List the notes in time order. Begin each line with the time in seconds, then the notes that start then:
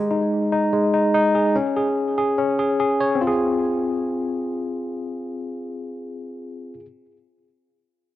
Already playing: G#3
0.11 D#4
0.52 D#4
0.73 G#3
0.94 D#4
1.14 D#4
1.35 G#4
1.56 C#4
1.76 G#4
2.18 G#4
2.38 C#4
2.59 G#4
2.80 G#4
3.01 C#5
3.15 C4
3.21 F4
3.27 G#4